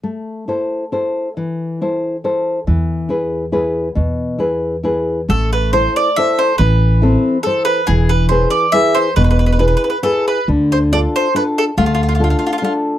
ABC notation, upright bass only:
X:1
M:3/4
L:1/8
Q:"Swing" 1/4=138
K:Am
V:1 name="Upright bass" clef=bass
z6 | z6 | E,,6 | E,,6 |
A,,,4 z2 | A,,,4 z2 | E,,,4 z2 | E,,,4 z2 |
D,,4 z2 | D,,4 z2 |]